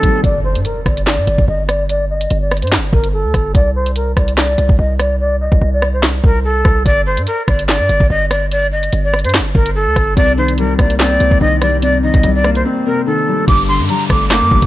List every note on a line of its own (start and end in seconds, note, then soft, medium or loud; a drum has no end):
0.00 0.20 C3 medium
0.00 0.25 C3 medium
0.00 0.25 D#3 medium
0.00 0.03 G3 medium
0.00 0.20 G3 medium
0.00 0.24 G3 medium
0.00 0.20 A#3 medium
0.00 0.24 A#3 medium
0.00 0.24 C4 loud
0.00 0.20 D#4 medium
0.00 0.21 A4 medium
0.00 kick medium
0.00 closed hi-hat medium
0.24 0.57 G1 loud
0.24 0.39 D5 loud
0.24 kick loud
0.24 closed hi-hat medium
0.24 impact medium
0.44 0.60 C5 medium
0.55 0.65 G2 loud
0.55 closed hi-hat medium
0.65 0.81 A#4 medium
0.65 closed hi-hat medium
0.86 1.19 G1 loud
0.86 1.01 D5 medium
0.86 kick medium
0.86 cross-stick loud
0.86 closed hi-hat medium
0.97 closed hi-hat medium
1.06 1.45 D5 medium
1.06 snare loud
1.06 clap loud
1.18 1.27 G2 loud
1.27 1.38 G1 loud
1.27 closed hi-hat medium
1.38 1.48 G1 loud
1.38 kick medium
1.48 2.27 G1 loud
1.48 1.63 D#5 medium
1.69 1.84 D5 medium
1.69 cross-stick loud
1.69 closed hi-hat medium
1.89 2.05 D5 loud
1.89 closed hi-hat medium
2.10 2.40 D#5 medium
2.21 closed hi-hat medium
2.30 2.64 G1 loud
2.30 closed hi-hat medium
2.42 2.57 D5 medium
2.51 cross-stick loud
2.51 closed hi-hat soft
2.57 closed hi-hat soft
2.62 2.79 G2 loud
2.62 2.70 C5 medium
2.62 closed hi-hat medium
2.67 closed hi-hat medium
2.72 snare loud
2.72 clap medium
2.78 2.92 G1 loud
2.93 3.26 G1 loud
2.93 3.08 A#4 medium
2.93 kick loud
3.04 closed hi-hat medium
3.13 3.52 A4 medium
3.25 3.33 D2 loud
3.34 3.54 G1 loud
3.34 kick loud
3.34 cross-stick loud
3.34 closed hi-hat medium
3.55 4.14 C2 loud
3.55 3.70 D5 loud
3.55 kick loud
3.55 closed hi-hat medium
3.76 3.91 C5 medium
3.86 closed hi-hat medium
3.96 4.12 A#4 medium
3.96 closed hi-hat medium
4.17 4.57 C2 loud
4.17 4.33 D5 medium
4.17 kick loud
4.17 cross-stick loud
4.17 closed hi-hat medium
4.28 closed hi-hat medium
4.37 4.76 D5 loud
4.37 snare loud
4.37 clap medium
4.58 4.69 C2 loud
4.58 closed hi-hat medium
4.69 4.78 C2 loud
4.69 kick loud
4.79 5.49 C2 loud
4.79 4.94 D#5 medium
4.99 5.15 D5 medium
4.99 cross-stick loud
4.99 closed hi-hat medium
5.20 5.36 D5 medium
5.41 5.71 D#5 medium
5.52 5.61 C2 loud
5.52 kick medium
5.61 6.21 C2 loud
5.73 5.88 D5 medium
5.82 cross-stick loud
5.94 6.01 C5 medium
6.03 snare loud
6.03 clap medium
6.24 6.63 C2 loud
6.24 6.39 A#4 medium
6.24 kick medium
6.45 6.83 A4 medium
6.65 6.85 C2 loud
6.65 kick loud
6.65 cross-stick loud
6.86 7.19 G1 loud
6.86 7.01 D5 loud
6.86 kick loud
6.86 closed hi-hat medium
7.06 7.22 C5 medium
7.17 7.27 G2 loud
7.17 closed hi-hat medium
7.27 7.43 A#4 medium
7.27 closed hi-hat medium
7.48 7.81 G1 loud
7.48 7.63 D5 medium
7.48 kick loud
7.48 cross-stick loud
7.48 closed hi-hat medium
7.59 closed hi-hat medium
7.68 8.07 D5 medium
7.68 snare loud
7.68 clap loud
7.80 7.89 G2 loud
7.89 8.00 G1 loud
7.89 closed hi-hat medium
8.00 8.10 G1 loud
8.00 kick loud
8.10 8.89 G1 loud
8.10 8.25 D#5 medium
8.31 8.46 D5 medium
8.31 cross-stick loud
8.31 closed hi-hat medium
8.52 8.67 D5 loud
8.52 closed hi-hat medium
8.72 9.02 D#5 medium
8.83 closed hi-hat medium
8.93 9.26 G1 loud
8.93 closed hi-hat medium
9.04 9.19 D5 medium
9.13 cross-stick loud
9.13 closed hi-hat soft
9.19 closed hi-hat soft
9.24 9.41 G2 loud
9.24 9.32 C5 medium
9.24 closed hi-hat medium
9.29 closed hi-hat medium
9.34 snare loud
9.34 clap loud
9.40 9.54 G1 loud
9.55 9.88 G1 loud
9.55 9.70 A#4 medium
9.55 kick medium
9.66 closed hi-hat medium
9.75 10.14 A4 medium
9.86 9.96 D2 loud
9.96 10.16 G1 loud
9.96 kick loud
9.96 cross-stick loud
9.96 closed hi-hat medium
10.17 10.76 C2 loud
10.17 11.19 C3 loud
10.17 10.32 D5 loud
10.17 kick loud
10.17 closed hi-hat medium
10.37 11.39 D#3 medium
10.37 10.53 C5 medium
10.48 closed hi-hat medium
10.58 11.60 G3 medium
10.58 10.74 A#4 medium
10.58 closed hi-hat medium
10.79 11.19 C2 loud
10.79 11.82 A#3 medium
10.79 10.95 D5 medium
10.79 kick loud
10.79 cross-stick loud
10.79 closed hi-hat medium
10.90 closed hi-hat medium
10.99 12.03 C4 loud
10.99 11.39 D5 medium
10.99 snare loud
10.99 clap loud
11.20 11.31 C2 loud
11.20 11.81 C3 medium
11.20 closed hi-hat medium
11.31 11.40 C2 loud
11.31 kick medium
11.41 12.11 C2 loud
11.41 12.01 D#3 medium
11.41 11.57 D#5 medium
11.62 12.22 G3 medium
11.62 11.77 D5 medium
11.62 cross-stick loud
11.62 closed hi-hat medium
11.82 12.85 C3 medium
11.82 11.98 D5 medium
11.82 closed hi-hat medium
12.03 13.05 D#3 medium
12.03 12.33 D#5 medium
12.14 12.23 C2 loud
12.14 kick loud
12.14 closed hi-hat medium
12.23 12.64 C2 loud
12.23 13.26 G3 medium
12.23 closed hi-hat medium
12.35 12.50 D5 medium
12.44 13.48 A#3 medium
12.44 cross-stick loud
12.44 closed hi-hat soft
12.55 12.63 C5 medium
12.55 closed hi-hat medium
12.65 13.48 C4 loud
12.86 13.48 C3 medium
12.86 13.02 A#4 medium
13.06 13.48 D#3 medium
13.06 13.45 A4 medium
13.27 13.48 G3 medium
13.48 13.81 G1 loud
13.48 14.50 G2 loud
13.48 13.63 D6 loud
13.48 kick loud
13.48 closed hi-hat medium
13.48 downlifter medium
13.68 14.66 D3 medium
13.68 13.84 C6 medium
13.80 13.89 G2 loud
13.89 14.66 G3 medium
13.89 14.05 A#5 medium
13.89 closed hi-hat medium
14.10 14.43 G1 loud
14.10 14.66 A3 medium
14.10 14.25 D6 medium
14.10 kick loud
14.10 cross-stick loud
14.10 closed hi-hat medium
14.30 14.66 A#3 loud
14.30 14.66 D6 medium
14.30 snare loud
14.30 clap loud
14.30 closed hi-hat medium
14.42 14.51 G2 loud
14.51 14.62 G1 loud
14.51 14.66 G2 medium
14.51 kick loud
14.62 14.66 G1 loud
14.62 kick loud
14.62 closed hi-hat medium